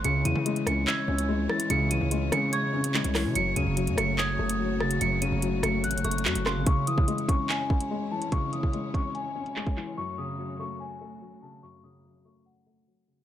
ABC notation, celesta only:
X:1
M:4/4
L:1/8
Q:1/4=145
K:C#m
V:1 name="Celesta"
c'' d''2 c'' g'3 a' | c'' d''2 c'' g'4 | c'' d''2 c'' g'3 a' | c'' d''2 c'' f'4 |
c' d'2 c' g3 a | c' d'2 c' g4 | c' d'2 c' g3 a | c' d'2 c' f4 |]